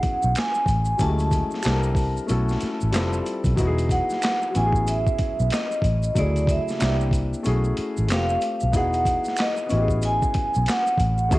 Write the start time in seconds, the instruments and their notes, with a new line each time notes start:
Already playing: grand piano F#3 B3 C#4 E4 G#4, vibraphone F#5
0.03 muted fingered electric bass stroke, kick, closed hi-hat
0.23 fingered electric bass B1, maracas
0.35 vibraphone G#5, finger snap, snare, clap, closed hi-hat, maracas
0.55 maracas
0.66 fingered electric bass A1, kick, closed hi-hat, maracas
0.85 maracas
0.98 fingered electric bass D2, grand piano F#3 A3 C#4 E4, kick, closed hi-hat, maracas
1.02 grand piano G4, vibraphone A5
1.09 grand piano G#3
1.19 closed hi-hat, maracas
1.31 kick, closed hi-hat, maracas
1.51 snare, maracas
1.62 grand piano G3 C4 D4 E4, finger snap, closed hi-hat, maracas
1.66 fingered electric bass C2, grand piano A4, snare, clap
1.73 grand piano A#4
1.83 maracas
1.95 kick, open hi-hat, maracas
2.17 maracas
2.26 fingered electric bass B1, grand piano A3 C#4 E4 F#4, closed hi-hat, maracas
2.31 grand piano A4
2.49 snare, maracas
2.60 muted fingered electric bass stroke, snare, closed hi-hat, maracas
2.81 fingered electric bass A1, maracas
2.91 fingered electric bass F1, grand piano G3 C4 E4 F4, finger snap, closed hi-hat, maracas
2.95 grand piano A4, snare, clap
3.13 maracas
3.26 closed hi-hat, maracas
3.44 fingered electric bass B1, kick, closed hi-hat, maracas
3.56 fingered electric bass E1, grand piano F#3 B3 D#4 E4, kick, closed hi-hat, maracas
3.60 grand piano F#4
3.67 grand piano G#4
3.78 closed hi-hat, maracas
3.89 vibraphone F#5, kick, closed hi-hat, maracas
4.10 snare, maracas
4.22 finger snap, snare, clap, closed hi-hat, maracas
4.42 maracas
4.50 grand piano F#3 B3
4.55 fingered electric bass A1, grand piano C#4 E4, vibraphone G#5, closed hi-hat, maracas
4.60 grand piano G4
4.66 grand piano G#4
4.72 kick, maracas
4.87 vibraphone E5, closed hi-hat, maracas
5.07 kick, maracas
5.19 muted fingered electric bass stroke, kick, closed hi-hat
5.40 fingered electric bass B1, maracas
5.50 vibraphone D#5, finger snap, snare, clap, closed hi-hat, maracas
5.72 maracas
5.82 fingered electric bass A1, kick, closed hi-hat, maracas
6.03 maracas
6.14 fingered electric bass D2, grand piano C#3 F#3 A3 E4, vibraphone D5, kick, closed hi-hat, maracas
6.19 grand piano G#4
6.36 closed hi-hat, maracas
6.47 vibraphone E5, kick, closed hi-hat, maracas
6.68 snare, maracas
6.79 fingered electric bass C2, grand piano A#3 C4 D4 E4, finger snap, snare, clap, closed hi-hat, maracas
6.83 grand piano G4
7.00 maracas
7.11 kick, closed hi-hat, maracas
7.34 maracas
7.43 fingered electric bass B1, grand piano A3 C#4 E4, closed hi-hat, maracas
7.47 grand piano F#4 G#4
7.64 maracas
7.77 muted fingered electric bass stroke, closed hi-hat
7.97 fingered electric bass A1, maracas
8.07 fingered electric bass F1, grand piano A3 C4 F4, finger snap, clap, closed hi-hat, maracas
8.12 grand piano G4, vibraphone F5, snare
8.29 maracas
8.41 closed hi-hat, maracas
8.60 fingered electric bass B1, maracas
8.72 fingered electric bass E1, grand piano B3 D#4 E4 F#4, kick, closed hi-hat, maracas
8.77 grand piano G#4, vibraphone F#5
8.93 closed hi-hat, maracas
9.05 kick, closed hi-hat, maracas
9.24 snare, maracas
9.36 vibraphone D#5, finger snap, snare, clap, closed hi-hat, maracas
9.57 maracas
9.66 grand piano B3 C#4, maracas
9.70 fingered electric bass A1, grand piano E4 F#4, closed hi-hat
9.76 grand piano G4
9.82 grand piano G#4
9.88 kick, maracas
10.02 vibraphone G#5, closed hi-hat, maracas
10.22 kick, maracas
10.34 muted fingered electric bass stroke, kick, closed hi-hat
10.54 fingered electric bass B1, maracas
10.66 vibraphone F#5, finger snap, snare, clap, closed hi-hat, maracas
10.87 maracas
10.98 fingered electric bass A1, kick, closed hi-hat, maracas
11.18 maracas
11.29 fingered electric bass D2, grand piano A3 C#4 E4 F#4, vibraphone E5, kick, closed hi-hat, maracas
11.34 grand piano G#4